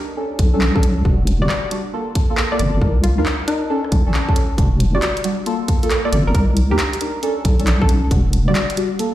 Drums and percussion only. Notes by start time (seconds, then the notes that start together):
0.39 kick, closed hi-hat
0.61 clap
0.76 kick
0.83 closed hi-hat
1.05 kick
1.27 closed hi-hat
1.49 cross-stick, clap
1.71 closed hi-hat
2.15 kick, closed hi-hat
2.37 clap
2.59 closed hi-hat
2.82 kick
3.04 closed hi-hat
3.26 cross-stick, clap
3.48 closed hi-hat
3.84 cross-stick
3.92 kick, closed hi-hat
4.14 clap
4.29 kick
4.36 closed hi-hat
4.58 kick, closed hi-hat
4.80 closed hi-hat
5.02 cross-stick, clap, closed hi-hat
5.17 closed hi-hat
5.24 closed hi-hat
5.46 closed hi-hat
5.68 kick, closed hi-hat
5.83 closed hi-hat
5.91 clap, closed hi-hat
6.13 closed hi-hat
6.35 kick, closed hi-hat
6.57 closed hi-hat
6.79 cross-stick, clap, closed hi-hat
6.93 closed hi-hat
7.01 closed hi-hat
7.23 closed hi-hat
7.45 kick, closed hi-hat
7.60 closed hi-hat
7.67 clap, closed hi-hat
7.82 kick
7.89 closed hi-hat
8.11 kick, closed hi-hat
8.33 closed hi-hat
8.55 cross-stick, clap, closed hi-hat
8.70 closed hi-hat
8.77 closed hi-hat
8.99 closed hi-hat